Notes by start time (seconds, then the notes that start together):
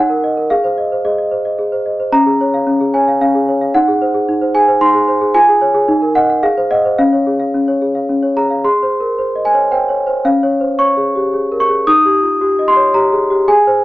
Already playing: D#4 F#5
0.10 A#4
0.24 D#5
0.37 A#4
0.50 G#4 F5
0.64 C5
0.78 D#5
0.92 C5
1.05 G#4 D#5
1.18 D#5
1.31 C5
1.45 D#5
1.59 G#4
1.72 C5
1.86 D#5
2.00 C5
2.12 C#4 A#5
2.26 G#4
2.41 C#5
2.54 F5
2.67 C#4
2.81 G#4
2.94 C#5 G#5
3.08 F5
3.21 C#4 F5
3.35 G#4
3.48 C#5
3.61 F5
3.74 D#4 F#5
3.88 G#4
4.02 C5
4.14 G#4
4.29 D#4
4.41 C5
4.55 G#4 G#5
4.68 C5
4.81 D#4 C6
4.94 G#4
5.08 C5
5.21 G#4
5.34 F4 G#5
5.49 G#4
5.61 C#5
5.74 G#4
5.88 D#4
6.02 A#4
6.15 D#5 F#5
6.30 F#5
6.43 G#4 F5
6.57 C5
6.71 D#5 F#5
6.85 C5
6.98 C#4 F5
7.13 C#5
7.27 G#4
7.40 F5
7.54 C#4
7.68 C#5
7.82 G#4
7.95 F5
8.09 C#4
8.23 C#5
8.37 G#4 A#5
8.50 F5
8.64 G#4 C6
8.83 C5
9.00 A#4
9.19 C5
9.36 D#5
9.45 G#5
9.54 C#5
9.71 C5 G5
9.89 C#5
10.07 C5
10.25 C#4 F5
10.43 C#5
10.61 C5
10.79 C#5 C#6
10.97 G#4
11.15 G4
11.34 G#4
11.52 A#4
11.60 C#6
11.69 G#4
11.87 D#4 D#6
12.05 G4
12.23 F4
12.41 G4
12.59 D#5
12.68 C6
12.76 C#5
12.94 G4 A#5
13.13 G#4
13.30 G4
13.48 G#4 G#5
13.67 C5